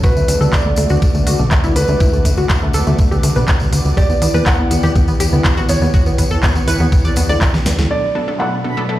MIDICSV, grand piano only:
0, 0, Header, 1, 2, 480
1, 0, Start_track
1, 0, Tempo, 491803
1, 36, Time_signature, 4, 2, 24, 8
1, 8777, End_track
2, 0, Start_track
2, 0, Title_t, "Grand piano"
2, 0, Program_c, 0, 0
2, 37, Note_on_c, 0, 71, 95
2, 470, Note_off_c, 0, 71, 0
2, 517, Note_on_c, 0, 74, 85
2, 950, Note_off_c, 0, 74, 0
2, 1717, Note_on_c, 0, 71, 92
2, 3783, Note_off_c, 0, 71, 0
2, 3877, Note_on_c, 0, 74, 100
2, 4310, Note_off_c, 0, 74, 0
2, 4356, Note_on_c, 0, 78, 86
2, 4790, Note_off_c, 0, 78, 0
2, 5555, Note_on_c, 0, 73, 92
2, 7623, Note_off_c, 0, 73, 0
2, 7715, Note_on_c, 0, 74, 93
2, 8149, Note_off_c, 0, 74, 0
2, 8196, Note_on_c, 0, 78, 79
2, 8629, Note_off_c, 0, 78, 0
2, 8777, End_track
0, 0, End_of_file